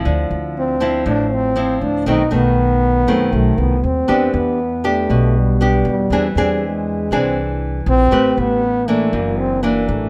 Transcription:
<<
  \new Staff \with { instrumentName = "Nylon-string guitar" } { \time 4/4 \key e \phrygian \tempo 4 = 119 << { <eis bis e'>4. <f c' e'>4. <f c' e'>4 | <dis a c'>8 <dis a>4. <dis a c'>4. r8 | <b d' g'>4 r8 <b d' g'>4. <b d' g'>8 r8 | <bis d' gis'>8 <bis d' gis'>4. <bis d' gis'>4. r8 |
<c' g' b'>4 r8 <e bes d'>4. <e ais d'>4 | } \\ { d2 a,2 | b,2 fis,2 | e2 b,2 | e2 e2 |
a2 fis,2 | } >> }
  \new Staff \with { instrumentName = "Trombone" } { \time 4/4 \key e \phrygian r4 c'4 d'8 c'4 d'8 | dis'8 b2 a8 b8 c'8~ | c'8 b4 a4 g4 g8~ | g8 g8 gis4 bis8 r4 bis8~ |
bis8 b4 a8 ais8 c'8 ais8 a8 | }
  \new Staff \with { instrumentName = "Upright bass" } { \clef bass \time 4/4 \key e \phrygian d,8 d,4. a,,4. d,8 | b,,8 b,,4. fis,8 b,,8 c,8 dis,8 | e,8 e,4. b,,4. e,8 | e,8 e,4. bis,,4. bes,,8 |
a,,8 a,,4. fis,,4. a,,8 | }
>>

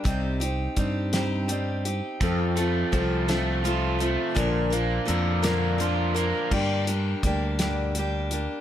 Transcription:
<<
  \new Staff \with { instrumentName = "Steel-string acoustic guitar" } { \time 6/8 \key g \minor \tempo 4. = 56 <c g c' ees' g'>8 <c' ees' g'>8 <g c' ees' g'>8 <c g c' ees' g'>8 <g c' ees' g'>8 <c' ees' g'>8 | <f c' f' a'>8 <c' f' a'>8 <f c' f' a'>8 <f c' f' a'>8 <f c' f' a'>8 <c' f' a'>8 | <bes, d f bes d' bes'>8 <f bes d' bes'>8 <f bes d' bes'>8 <bes, d f bes d' bes'>8 <f bes d' bes'>8 <f bes d' bes'>8 | <g, d g bes d' g'>8 <g bes d' g'>8 <g bes d' g'>8 <g, d g bes d' g'>8 <g bes d' g'>8 <g bes d' g'>8 | }
  \new Staff \with { instrumentName = "Overdriven electric guitar" } { \time 6/8 \key g \minor r2. | f,8 a8 f8 a8 f'8 a8 | bes,8 bes8 d8 bes8 f'8 bes8 | r2. | }
  \new Staff \with { instrumentName = "Fingered electric bass" } { \clef bass \time 6/8 \key g \minor c,4 g,2 | f,4 c,2 | bes,,4 f,2 | g,4 d,2 | }
  \new DrumStaff \with { instrumentName = "Drums" } \drummode { \time 6/8 <hh bd>8 hh8 <hh bd>8 <hh sn>8 hh8 hh8 | <hh bd>8 hh8 <hh bd>8 <hh sn>8 hh8 hh8 | <hh bd>8 hh8 hh8 <hh sn>8 hh8 hh8 | <cymc bd>8 hh8 <hh bd>8 <hh sn>8 hh8 hh8 | }
>>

